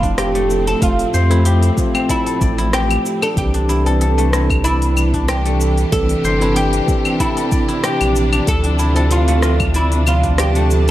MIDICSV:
0, 0, Header, 1, 7, 480
1, 0, Start_track
1, 0, Tempo, 638298
1, 614, Time_signature, 4, 2, 24, 8
1, 8204, End_track
2, 0, Start_track
2, 0, Title_t, "Oud"
2, 0, Program_c, 0, 24
2, 0, Note_on_c, 0, 65, 89
2, 133, Note_off_c, 0, 65, 0
2, 136, Note_on_c, 0, 67, 100
2, 504, Note_off_c, 0, 67, 0
2, 507, Note_on_c, 0, 69, 100
2, 615, Note_off_c, 0, 69, 0
2, 618, Note_on_c, 0, 65, 80
2, 1306, Note_off_c, 0, 65, 0
2, 1582, Note_on_c, 0, 64, 84
2, 2055, Note_off_c, 0, 64, 0
2, 2058, Note_on_c, 0, 67, 107
2, 2426, Note_off_c, 0, 67, 0
2, 2429, Note_on_c, 0, 69, 117
2, 2466, Note_off_c, 0, 69, 0
2, 2541, Note_on_c, 0, 67, 98
2, 3228, Note_off_c, 0, 67, 0
2, 3490, Note_on_c, 0, 64, 94
2, 3970, Note_off_c, 0, 64, 0
2, 3973, Note_on_c, 0, 67, 108
2, 4424, Note_off_c, 0, 67, 0
2, 4454, Note_on_c, 0, 69, 112
2, 4904, Note_off_c, 0, 69, 0
2, 4935, Note_on_c, 0, 67, 97
2, 5411, Note_off_c, 0, 67, 0
2, 5414, Note_on_c, 0, 64, 90
2, 5893, Note_off_c, 0, 64, 0
2, 5896, Note_on_c, 0, 67, 96
2, 6377, Note_off_c, 0, 67, 0
2, 6380, Note_on_c, 0, 69, 108
2, 6854, Note_off_c, 0, 69, 0
2, 6857, Note_on_c, 0, 65, 88
2, 7335, Note_off_c, 0, 65, 0
2, 7338, Note_on_c, 0, 64, 80
2, 7573, Note_off_c, 0, 64, 0
2, 7576, Note_on_c, 0, 65, 76
2, 7799, Note_off_c, 0, 65, 0
2, 7817, Note_on_c, 0, 67, 98
2, 8158, Note_off_c, 0, 67, 0
2, 8204, End_track
3, 0, Start_track
3, 0, Title_t, "Guzheng"
3, 0, Program_c, 1, 107
3, 0, Note_on_c, 1, 57, 72
3, 0, Note_on_c, 1, 65, 79
3, 0, Note_on_c, 1, 69, 76
3, 0, Note_on_c, 1, 74, 79
3, 22, Note_on_c, 1, 62, 73
3, 260, Note_off_c, 1, 57, 0
3, 263, Note_on_c, 1, 57, 72
3, 823, Note_off_c, 1, 69, 0
3, 856, Note_on_c, 1, 72, 103
3, 982, Note_on_c, 1, 64, 92
3, 1028, Note_off_c, 1, 65, 0
3, 1043, Note_off_c, 1, 74, 0
3, 1095, Note_on_c, 1, 67, 94
3, 1462, Note_on_c, 1, 60, 74
3, 1572, Note_on_c, 1, 69, 81
3, 1697, Note_off_c, 1, 69, 0
3, 1700, Note_on_c, 1, 69, 77
3, 1815, Note_on_c, 1, 74, 76
3, 1939, Note_off_c, 1, 64, 0
3, 1942, Note_on_c, 1, 64, 98
3, 2053, Note_off_c, 1, 67, 0
3, 2056, Note_on_c, 1, 67, 101
3, 2127, Note_off_c, 1, 62, 0
3, 2344, Note_off_c, 1, 72, 0
3, 2423, Note_on_c, 1, 62, 70
3, 2660, Note_off_c, 1, 62, 0
3, 2663, Note_on_c, 1, 62, 75
3, 2766, Note_off_c, 1, 57, 0
3, 2772, Note_off_c, 1, 64, 0
3, 2775, Note_on_c, 1, 64, 98
3, 2901, Note_off_c, 1, 69, 0
3, 2904, Note_on_c, 1, 69, 95
3, 3014, Note_off_c, 1, 69, 0
3, 3017, Note_on_c, 1, 69, 83
3, 3142, Note_on_c, 1, 57, 80
3, 3204, Note_off_c, 1, 74, 0
3, 3253, Note_off_c, 1, 64, 0
3, 3256, Note_on_c, 1, 64, 79
3, 3492, Note_on_c, 1, 74, 84
3, 3718, Note_off_c, 1, 60, 0
3, 3826, Note_off_c, 1, 67, 0
3, 3861, Note_off_c, 1, 62, 0
3, 3864, Note_on_c, 1, 62, 73
3, 4101, Note_off_c, 1, 57, 0
3, 4104, Note_on_c, 1, 57, 70
3, 4668, Note_off_c, 1, 69, 0
3, 4697, Note_on_c, 1, 72, 101
3, 4823, Note_off_c, 1, 64, 0
3, 4826, Note_on_c, 1, 64, 90
3, 4881, Note_off_c, 1, 74, 0
3, 4934, Note_on_c, 1, 67, 101
3, 5305, Note_on_c, 1, 60, 73
3, 5417, Note_on_c, 1, 69, 77
3, 5537, Note_off_c, 1, 69, 0
3, 5540, Note_on_c, 1, 69, 76
3, 5655, Note_on_c, 1, 74, 73
3, 5775, Note_off_c, 1, 64, 0
3, 5778, Note_on_c, 1, 64, 98
3, 5891, Note_off_c, 1, 67, 0
3, 5894, Note_on_c, 1, 67, 99
3, 5969, Note_off_c, 1, 62, 0
3, 6186, Note_off_c, 1, 72, 0
3, 6260, Note_on_c, 1, 62, 71
3, 6498, Note_off_c, 1, 62, 0
3, 6501, Note_on_c, 1, 62, 73
3, 6607, Note_off_c, 1, 57, 0
3, 6608, Note_off_c, 1, 64, 0
3, 6611, Note_on_c, 1, 64, 101
3, 6735, Note_off_c, 1, 69, 0
3, 6738, Note_on_c, 1, 69, 99
3, 6845, Note_off_c, 1, 69, 0
3, 6848, Note_on_c, 1, 69, 80
3, 6979, Note_on_c, 1, 57, 75
3, 7044, Note_off_c, 1, 74, 0
3, 7092, Note_on_c, 1, 65, 81
3, 7137, Note_off_c, 1, 64, 0
3, 7329, Note_on_c, 1, 74, 81
3, 7561, Note_off_c, 1, 60, 0
3, 7664, Note_off_c, 1, 67, 0
3, 7695, Note_off_c, 1, 62, 0
3, 7698, Note_on_c, 1, 62, 69
3, 7938, Note_off_c, 1, 57, 0
3, 7941, Note_on_c, 1, 57, 66
3, 8204, Note_off_c, 1, 57, 0
3, 8204, Note_off_c, 1, 62, 0
3, 8204, Note_off_c, 1, 65, 0
3, 8204, Note_off_c, 1, 69, 0
3, 8204, Note_off_c, 1, 74, 0
3, 8204, End_track
4, 0, Start_track
4, 0, Title_t, "Tine electric piano"
4, 0, Program_c, 2, 4
4, 0, Control_c, 2, 64, 127
4, 0, Note_on_c, 2, 53, 83
4, 0, Note_on_c, 2, 57, 76
4, 0, Note_on_c, 2, 60, 69
4, 0, Note_on_c, 2, 65, 85
4, 579, Note_off_c, 2, 57, 0
4, 586, Note_off_c, 2, 60, 0
4, 594, Note_off_c, 2, 53, 0
4, 604, Note_on_c, 2, 57, 82
4, 614, Note_on_c, 2, 60, 77
4, 620, Note_off_c, 2, 65, 0
4, 620, Note_on_c, 2, 65, 90
4, 947, Note_off_c, 2, 57, 0
4, 951, Note_off_c, 2, 60, 0
4, 955, Note_off_c, 2, 65, 0
4, 971, Note_on_c, 2, 57, 88
4, 978, Note_on_c, 2, 60, 76
4, 987, Note_on_c, 2, 53, 92
4, 1302, Note_off_c, 2, 57, 0
4, 1305, Note_off_c, 2, 60, 0
4, 1310, Note_off_c, 2, 53, 0
4, 1315, Note_on_c, 2, 57, 77
4, 1329, Note_on_c, 2, 60, 73
4, 1345, Note_on_c, 2, 53, 83
4, 2498, Note_off_c, 2, 57, 0
4, 2505, Note_off_c, 2, 60, 0
4, 2513, Note_off_c, 2, 53, 0
4, 2524, Note_on_c, 2, 52, 87
4, 2532, Note_on_c, 2, 60, 74
4, 2540, Note_on_c, 2, 62, 91
4, 2545, Control_c, 2, 64, 0
4, 2671, Control_c, 2, 64, 127
4, 2867, Note_off_c, 2, 52, 0
4, 2871, Note_off_c, 2, 60, 0
4, 2875, Note_off_c, 2, 62, 0
4, 2891, Note_on_c, 2, 52, 81
4, 2899, Note_on_c, 2, 60, 76
4, 2907, Note_on_c, 2, 62, 95
4, 3222, Note_off_c, 2, 52, 0
4, 3226, Note_off_c, 2, 60, 0
4, 3230, Note_off_c, 2, 62, 0
4, 3237, Note_on_c, 2, 52, 79
4, 3250, Note_on_c, 2, 60, 68
4, 3267, Note_on_c, 2, 62, 88
4, 4419, Note_off_c, 2, 52, 0
4, 4426, Note_off_c, 2, 60, 0
4, 4434, Note_off_c, 2, 62, 0
4, 4447, Note_on_c, 2, 52, 84
4, 4457, Note_on_c, 2, 60, 77
4, 4462, Note_on_c, 2, 62, 95
4, 4788, Note_off_c, 2, 52, 0
4, 4793, Note_off_c, 2, 60, 0
4, 4796, Note_off_c, 2, 62, 0
4, 4813, Note_on_c, 2, 52, 85
4, 4821, Note_on_c, 2, 60, 80
4, 4829, Note_on_c, 2, 62, 90
4, 5143, Note_off_c, 2, 52, 0
4, 5147, Note_off_c, 2, 60, 0
4, 5151, Note_off_c, 2, 62, 0
4, 5157, Note_on_c, 2, 52, 79
4, 5172, Note_on_c, 2, 60, 69
4, 5187, Note_on_c, 2, 62, 78
4, 6339, Note_off_c, 2, 52, 0
4, 6347, Note_off_c, 2, 60, 0
4, 6354, Note_off_c, 2, 62, 0
4, 6362, Note_on_c, 2, 53, 87
4, 6369, Note_on_c, 2, 60, 79
4, 6378, Note_on_c, 2, 64, 92
4, 6385, Control_c, 2, 64, 0
4, 6534, Control_c, 2, 64, 127
4, 6706, Note_off_c, 2, 53, 0
4, 6709, Note_off_c, 2, 60, 0
4, 6713, Note_off_c, 2, 64, 0
4, 6731, Note_on_c, 2, 53, 86
4, 6738, Note_on_c, 2, 60, 78
4, 6745, Note_on_c, 2, 64, 91
4, 7062, Note_off_c, 2, 53, 0
4, 7065, Note_off_c, 2, 60, 0
4, 7069, Note_off_c, 2, 64, 0
4, 7077, Note_on_c, 2, 53, 71
4, 7094, Note_on_c, 2, 60, 72
4, 7108, Note_on_c, 2, 76, 85
4, 8204, Note_off_c, 2, 53, 0
4, 8204, Note_off_c, 2, 60, 0
4, 8204, Note_off_c, 2, 76, 0
4, 8204, End_track
5, 0, Start_track
5, 0, Title_t, "String section"
5, 0, Program_c, 3, 48
5, 0, Note_on_c, 3, 45, 77
5, 0, Note_on_c, 3, 60, 81
5, 2531, Note_on_c, 3, 48, 82
5, 2537, Note_off_c, 3, 45, 0
5, 2919, Note_on_c, 3, 52, 80
5, 3085, Note_on_c, 3, 62, 80
5, 3683, Note_on_c, 3, 67, 86
5, 4021, Note_off_c, 3, 60, 0
5, 6375, Note_off_c, 3, 52, 0
5, 6455, Note_on_c, 3, 53, 80
5, 7333, Note_off_c, 3, 67, 0
5, 7758, Note_on_c, 3, 81, 85
5, 8204, Note_off_c, 3, 48, 0
5, 8204, Note_off_c, 3, 53, 0
5, 8204, Note_off_c, 3, 62, 0
5, 8204, Note_off_c, 3, 81, 0
5, 8204, End_track
6, 0, Start_track
6, 0, Title_t, "Sub bass"
6, 0, Program_c, 4, 38
6, 0, Note_on_c, 4, 29, 107
6, 563, Note_off_c, 4, 29, 0
6, 614, Note_on_c, 4, 29, 98
6, 789, Note_off_c, 4, 29, 0
6, 856, Note_on_c, 4, 41, 114
6, 1283, Note_off_c, 4, 41, 0
6, 1814, Note_on_c, 4, 33, 116
6, 2242, Note_off_c, 4, 33, 0
6, 2532, Note_on_c, 4, 36, 110
6, 4401, Note_off_c, 4, 36, 0
6, 4454, Note_on_c, 4, 36, 104
6, 4629, Note_off_c, 4, 36, 0
6, 4692, Note_on_c, 4, 31, 107
6, 5121, Note_off_c, 4, 31, 0
6, 6023, Note_on_c, 4, 34, 100
6, 6323, Note_off_c, 4, 34, 0
6, 6373, Note_on_c, 4, 38, 108
6, 8204, Note_off_c, 4, 38, 0
6, 8204, End_track
7, 0, Start_track
7, 0, Title_t, "Drums"
7, 22, Note_on_c, 9, 36, 62
7, 25, Note_on_c, 9, 46, 33
7, 27, Note_on_c, 9, 82, 35
7, 97, Note_off_c, 9, 36, 0
7, 100, Note_off_c, 9, 46, 0
7, 102, Note_off_c, 9, 82, 0
7, 135, Note_on_c, 9, 37, 80
7, 135, Note_on_c, 9, 46, 65
7, 136, Note_on_c, 9, 82, 44
7, 210, Note_off_c, 9, 37, 0
7, 210, Note_off_c, 9, 46, 0
7, 211, Note_off_c, 9, 82, 0
7, 265, Note_on_c, 9, 46, 49
7, 266, Note_on_c, 9, 82, 33
7, 340, Note_off_c, 9, 46, 0
7, 341, Note_off_c, 9, 82, 0
7, 378, Note_on_c, 9, 82, 75
7, 453, Note_off_c, 9, 82, 0
7, 506, Note_on_c, 9, 46, 34
7, 508, Note_on_c, 9, 82, 33
7, 581, Note_off_c, 9, 46, 0
7, 583, Note_off_c, 9, 82, 0
7, 615, Note_on_c, 9, 36, 125
7, 616, Note_on_c, 9, 46, 63
7, 618, Note_on_c, 9, 82, 45
7, 690, Note_off_c, 9, 36, 0
7, 691, Note_off_c, 9, 46, 0
7, 693, Note_off_c, 9, 82, 0
7, 746, Note_on_c, 9, 46, 46
7, 748, Note_on_c, 9, 82, 34
7, 822, Note_off_c, 9, 46, 0
7, 823, Note_off_c, 9, 82, 0
7, 857, Note_on_c, 9, 82, 79
7, 932, Note_off_c, 9, 82, 0
7, 983, Note_on_c, 9, 46, 31
7, 984, Note_on_c, 9, 82, 33
7, 1058, Note_off_c, 9, 46, 0
7, 1060, Note_off_c, 9, 82, 0
7, 1093, Note_on_c, 9, 46, 59
7, 1094, Note_on_c, 9, 82, 42
7, 1168, Note_off_c, 9, 46, 0
7, 1170, Note_off_c, 9, 82, 0
7, 1223, Note_on_c, 9, 46, 46
7, 1224, Note_on_c, 9, 82, 32
7, 1298, Note_off_c, 9, 46, 0
7, 1299, Note_off_c, 9, 82, 0
7, 1335, Note_on_c, 9, 36, 106
7, 1336, Note_on_c, 9, 82, 80
7, 1410, Note_off_c, 9, 36, 0
7, 1412, Note_off_c, 9, 82, 0
7, 1465, Note_on_c, 9, 46, 28
7, 1465, Note_on_c, 9, 75, 69
7, 1466, Note_on_c, 9, 82, 33
7, 1540, Note_off_c, 9, 46, 0
7, 1540, Note_off_c, 9, 75, 0
7, 1541, Note_off_c, 9, 82, 0
7, 1575, Note_on_c, 9, 36, 62
7, 1576, Note_on_c, 9, 46, 73
7, 1577, Note_on_c, 9, 82, 48
7, 1650, Note_off_c, 9, 36, 0
7, 1651, Note_off_c, 9, 46, 0
7, 1652, Note_off_c, 9, 82, 0
7, 1704, Note_on_c, 9, 46, 46
7, 1706, Note_on_c, 9, 82, 32
7, 1779, Note_off_c, 9, 46, 0
7, 1781, Note_off_c, 9, 82, 0
7, 1815, Note_on_c, 9, 36, 111
7, 1815, Note_on_c, 9, 82, 80
7, 1890, Note_off_c, 9, 36, 0
7, 1890, Note_off_c, 9, 82, 0
7, 1944, Note_on_c, 9, 46, 30
7, 1945, Note_on_c, 9, 82, 36
7, 2019, Note_off_c, 9, 46, 0
7, 2020, Note_off_c, 9, 82, 0
7, 2055, Note_on_c, 9, 37, 85
7, 2055, Note_on_c, 9, 46, 68
7, 2057, Note_on_c, 9, 82, 46
7, 2130, Note_off_c, 9, 37, 0
7, 2130, Note_off_c, 9, 46, 0
7, 2132, Note_off_c, 9, 82, 0
7, 2185, Note_on_c, 9, 46, 44
7, 2185, Note_on_c, 9, 75, 60
7, 2186, Note_on_c, 9, 82, 32
7, 2260, Note_off_c, 9, 46, 0
7, 2260, Note_off_c, 9, 75, 0
7, 2262, Note_off_c, 9, 82, 0
7, 2299, Note_on_c, 9, 82, 79
7, 2374, Note_off_c, 9, 82, 0
7, 2425, Note_on_c, 9, 46, 30
7, 2425, Note_on_c, 9, 75, 81
7, 2426, Note_on_c, 9, 82, 33
7, 2500, Note_off_c, 9, 46, 0
7, 2500, Note_off_c, 9, 75, 0
7, 2501, Note_off_c, 9, 82, 0
7, 2534, Note_on_c, 9, 36, 119
7, 2535, Note_on_c, 9, 46, 64
7, 2536, Note_on_c, 9, 82, 46
7, 2609, Note_off_c, 9, 36, 0
7, 2610, Note_off_c, 9, 46, 0
7, 2612, Note_off_c, 9, 82, 0
7, 2663, Note_on_c, 9, 46, 48
7, 2738, Note_off_c, 9, 46, 0
7, 2778, Note_on_c, 9, 82, 79
7, 2853, Note_off_c, 9, 82, 0
7, 2905, Note_on_c, 9, 46, 28
7, 2906, Note_on_c, 9, 82, 36
7, 2980, Note_off_c, 9, 46, 0
7, 2982, Note_off_c, 9, 82, 0
7, 3016, Note_on_c, 9, 46, 57
7, 3018, Note_on_c, 9, 82, 44
7, 3091, Note_off_c, 9, 46, 0
7, 3093, Note_off_c, 9, 82, 0
7, 3147, Note_on_c, 9, 46, 44
7, 3149, Note_on_c, 9, 82, 35
7, 3222, Note_off_c, 9, 46, 0
7, 3224, Note_off_c, 9, 82, 0
7, 3258, Note_on_c, 9, 37, 80
7, 3259, Note_on_c, 9, 82, 76
7, 3333, Note_off_c, 9, 37, 0
7, 3334, Note_off_c, 9, 82, 0
7, 3382, Note_on_c, 9, 36, 112
7, 3387, Note_on_c, 9, 46, 29
7, 3387, Note_on_c, 9, 75, 73
7, 3388, Note_on_c, 9, 82, 32
7, 3457, Note_off_c, 9, 36, 0
7, 3462, Note_off_c, 9, 46, 0
7, 3462, Note_off_c, 9, 75, 0
7, 3463, Note_off_c, 9, 82, 0
7, 3498, Note_on_c, 9, 46, 67
7, 3499, Note_on_c, 9, 82, 44
7, 3573, Note_off_c, 9, 46, 0
7, 3574, Note_off_c, 9, 82, 0
7, 3624, Note_on_c, 9, 46, 44
7, 3626, Note_on_c, 9, 82, 35
7, 3700, Note_off_c, 9, 46, 0
7, 3701, Note_off_c, 9, 82, 0
7, 3736, Note_on_c, 9, 75, 57
7, 3738, Note_on_c, 9, 82, 80
7, 3812, Note_off_c, 9, 75, 0
7, 3813, Note_off_c, 9, 82, 0
7, 3862, Note_on_c, 9, 36, 61
7, 3864, Note_on_c, 9, 46, 31
7, 3865, Note_on_c, 9, 82, 35
7, 3937, Note_off_c, 9, 36, 0
7, 3939, Note_off_c, 9, 46, 0
7, 3941, Note_off_c, 9, 82, 0
7, 3975, Note_on_c, 9, 37, 80
7, 3975, Note_on_c, 9, 46, 68
7, 3976, Note_on_c, 9, 82, 44
7, 4050, Note_off_c, 9, 37, 0
7, 4050, Note_off_c, 9, 46, 0
7, 4051, Note_off_c, 9, 82, 0
7, 4102, Note_on_c, 9, 46, 42
7, 4104, Note_on_c, 9, 82, 34
7, 4178, Note_off_c, 9, 46, 0
7, 4179, Note_off_c, 9, 82, 0
7, 4216, Note_on_c, 9, 82, 84
7, 4292, Note_off_c, 9, 82, 0
7, 4343, Note_on_c, 9, 46, 32
7, 4345, Note_on_c, 9, 82, 36
7, 4418, Note_off_c, 9, 46, 0
7, 4420, Note_off_c, 9, 82, 0
7, 4454, Note_on_c, 9, 36, 121
7, 4455, Note_on_c, 9, 46, 61
7, 4456, Note_on_c, 9, 82, 45
7, 4530, Note_off_c, 9, 36, 0
7, 4530, Note_off_c, 9, 46, 0
7, 4531, Note_off_c, 9, 82, 0
7, 4582, Note_on_c, 9, 46, 44
7, 4584, Note_on_c, 9, 82, 31
7, 4657, Note_off_c, 9, 46, 0
7, 4659, Note_off_c, 9, 82, 0
7, 4697, Note_on_c, 9, 82, 76
7, 4772, Note_off_c, 9, 82, 0
7, 4823, Note_on_c, 9, 46, 30
7, 4825, Note_on_c, 9, 82, 35
7, 4898, Note_off_c, 9, 46, 0
7, 4900, Note_off_c, 9, 82, 0
7, 4933, Note_on_c, 9, 46, 57
7, 4935, Note_on_c, 9, 82, 41
7, 5009, Note_off_c, 9, 46, 0
7, 5010, Note_off_c, 9, 82, 0
7, 5060, Note_on_c, 9, 46, 42
7, 5062, Note_on_c, 9, 82, 32
7, 5136, Note_off_c, 9, 46, 0
7, 5137, Note_off_c, 9, 82, 0
7, 5175, Note_on_c, 9, 36, 107
7, 5177, Note_on_c, 9, 82, 81
7, 5250, Note_off_c, 9, 36, 0
7, 5252, Note_off_c, 9, 82, 0
7, 5302, Note_on_c, 9, 46, 29
7, 5302, Note_on_c, 9, 75, 69
7, 5304, Note_on_c, 9, 82, 32
7, 5377, Note_off_c, 9, 46, 0
7, 5377, Note_off_c, 9, 75, 0
7, 5379, Note_off_c, 9, 82, 0
7, 5415, Note_on_c, 9, 36, 62
7, 5415, Note_on_c, 9, 46, 64
7, 5417, Note_on_c, 9, 82, 44
7, 5490, Note_off_c, 9, 36, 0
7, 5491, Note_off_c, 9, 46, 0
7, 5492, Note_off_c, 9, 82, 0
7, 5542, Note_on_c, 9, 46, 43
7, 5543, Note_on_c, 9, 82, 33
7, 5617, Note_off_c, 9, 46, 0
7, 5619, Note_off_c, 9, 82, 0
7, 5653, Note_on_c, 9, 82, 80
7, 5655, Note_on_c, 9, 36, 111
7, 5728, Note_off_c, 9, 82, 0
7, 5730, Note_off_c, 9, 36, 0
7, 5782, Note_on_c, 9, 46, 28
7, 5783, Note_on_c, 9, 82, 35
7, 5857, Note_off_c, 9, 46, 0
7, 5858, Note_off_c, 9, 82, 0
7, 5893, Note_on_c, 9, 37, 74
7, 5893, Note_on_c, 9, 46, 60
7, 5894, Note_on_c, 9, 82, 45
7, 5968, Note_off_c, 9, 37, 0
7, 5968, Note_off_c, 9, 46, 0
7, 5970, Note_off_c, 9, 82, 0
7, 6021, Note_on_c, 9, 46, 44
7, 6021, Note_on_c, 9, 75, 60
7, 6023, Note_on_c, 9, 82, 33
7, 6097, Note_off_c, 9, 46, 0
7, 6097, Note_off_c, 9, 75, 0
7, 6098, Note_off_c, 9, 82, 0
7, 6134, Note_on_c, 9, 82, 78
7, 6210, Note_off_c, 9, 82, 0
7, 6261, Note_on_c, 9, 46, 31
7, 6261, Note_on_c, 9, 75, 74
7, 6263, Note_on_c, 9, 82, 35
7, 6337, Note_off_c, 9, 46, 0
7, 6337, Note_off_c, 9, 75, 0
7, 6338, Note_off_c, 9, 82, 0
7, 6372, Note_on_c, 9, 46, 66
7, 6374, Note_on_c, 9, 36, 121
7, 6374, Note_on_c, 9, 82, 42
7, 6447, Note_off_c, 9, 46, 0
7, 6449, Note_off_c, 9, 36, 0
7, 6449, Note_off_c, 9, 82, 0
7, 6495, Note_on_c, 9, 46, 42
7, 6571, Note_off_c, 9, 46, 0
7, 6610, Note_on_c, 9, 82, 73
7, 6685, Note_off_c, 9, 82, 0
7, 6736, Note_on_c, 9, 46, 29
7, 6737, Note_on_c, 9, 82, 32
7, 6811, Note_off_c, 9, 46, 0
7, 6812, Note_off_c, 9, 82, 0
7, 6848, Note_on_c, 9, 46, 59
7, 6850, Note_on_c, 9, 82, 38
7, 6924, Note_off_c, 9, 46, 0
7, 6925, Note_off_c, 9, 82, 0
7, 6978, Note_on_c, 9, 46, 44
7, 6979, Note_on_c, 9, 82, 33
7, 7053, Note_off_c, 9, 46, 0
7, 7054, Note_off_c, 9, 82, 0
7, 7087, Note_on_c, 9, 37, 72
7, 7089, Note_on_c, 9, 82, 76
7, 7162, Note_off_c, 9, 37, 0
7, 7164, Note_off_c, 9, 82, 0
7, 7218, Note_on_c, 9, 46, 30
7, 7218, Note_on_c, 9, 75, 79
7, 7220, Note_on_c, 9, 82, 33
7, 7221, Note_on_c, 9, 36, 109
7, 7293, Note_off_c, 9, 46, 0
7, 7293, Note_off_c, 9, 75, 0
7, 7295, Note_off_c, 9, 82, 0
7, 7296, Note_off_c, 9, 36, 0
7, 7327, Note_on_c, 9, 46, 63
7, 7328, Note_on_c, 9, 82, 45
7, 7402, Note_off_c, 9, 46, 0
7, 7404, Note_off_c, 9, 82, 0
7, 7458, Note_on_c, 9, 46, 43
7, 7459, Note_on_c, 9, 82, 33
7, 7533, Note_off_c, 9, 46, 0
7, 7535, Note_off_c, 9, 82, 0
7, 7570, Note_on_c, 9, 75, 60
7, 7571, Note_on_c, 9, 82, 78
7, 7645, Note_off_c, 9, 75, 0
7, 7646, Note_off_c, 9, 82, 0
7, 7697, Note_on_c, 9, 46, 30
7, 7698, Note_on_c, 9, 82, 34
7, 7701, Note_on_c, 9, 36, 61
7, 7772, Note_off_c, 9, 46, 0
7, 7773, Note_off_c, 9, 82, 0
7, 7776, Note_off_c, 9, 36, 0
7, 7808, Note_on_c, 9, 37, 70
7, 7808, Note_on_c, 9, 46, 63
7, 7809, Note_on_c, 9, 82, 45
7, 7883, Note_off_c, 9, 37, 0
7, 7883, Note_off_c, 9, 46, 0
7, 7885, Note_off_c, 9, 82, 0
7, 7936, Note_on_c, 9, 46, 43
7, 7938, Note_on_c, 9, 82, 33
7, 8011, Note_off_c, 9, 46, 0
7, 8013, Note_off_c, 9, 82, 0
7, 8051, Note_on_c, 9, 82, 81
7, 8126, Note_off_c, 9, 82, 0
7, 8180, Note_on_c, 9, 46, 30
7, 8204, Note_off_c, 9, 46, 0
7, 8204, End_track
0, 0, End_of_file